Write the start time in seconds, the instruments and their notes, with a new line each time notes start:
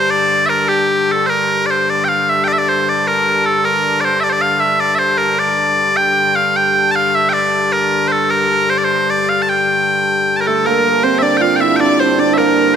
Already playing: hurdy-gurdy G2 D3, bagpipes C5
0.10 bagpipes D5
0.46 bagpipes A#4 E5
0.69 bagpipes G4
1.12 bagpipes A4
1.26 hurdy-gurdy G2 D3, bagpipes A#4 C5
1.66 bagpipes D5
1.70 bagpipes C5
1.90 bagpipes D5
2.04 bagpipes G5
2.09 bagpipes F5
2.29 bagpipes E5
2.44 bagpipes D5 G5
2.53 bagpipes E5
2.58 bagpipes D5
2.69 bagpipes C5
2.89 bagpipes D5
3.07 bagpipes A#4
3.45 bagpipes A4
3.65 bagpipes A#4
4.01 bagpipes C5 D5
4.20 bagpipes D5 E5
4.30 bagpipes C5 D5
4.41 bagpipes F5
4.60 bagpipes E5
4.80 bagpipes D5
4.95 bagpipes C5 E5
5.18 bagpipes A#4
5.39 bagpipes D5
5.96 hurdy-gurdy G2 D3, bagpipes G5
6.36 bagpipes F5
6.56 bagpipes G5
6.91 bagpipes A5
6.96 bagpipes F5
7.15 bagpipes E5
7.29 bagpipes G5
7.33 bagpipes D5
7.72 bagpipes A#4
8.08 bagpipes A4 C5
8.30 bagpipes A#4
8.70 bagpipes C5
8.78 bagpipes D5
8.84 bagpipes C5
9.10 bagpipes D5
9.29 bagpipes F5
9.42 bagpipes A5
9.49 bagpipes G5
10.37 bagpipes A#4 A5
10.45 hammered dulcimer A3, fiddle A4, bagpipes A4
10.64 hurdy-gurdy G2 D3, hammered dulcimer A#3, fiddle A#4, bagpipes A#4
10.84 fiddle A#4
11.03 hammered dulcimer C4, bagpipes C5, fiddle C5
11.19 hammered dulcimer D4, bagpipes D5 E5
11.23 fiddle D5
11.37 hammered dulcimer F4, bagpipes G5
11.42 bagpipes F5, fiddle F5
11.56 bagpipes G5
11.61 hammered dulcimer E4, bagpipes E5, fiddle E5
11.76 bagpipes G5
11.80 hammered dulcimer D4, bagpipes D5, fiddle D5
12.00 hammered dulcimer C4, bagpipes C5, fiddle C5
12.18 hammered dulcimer D4, fiddle D5, bagpipes D5
12.34 fiddle A#4, bagpipes E5
12.38 hammered dulcimer A#3, bagpipes A#4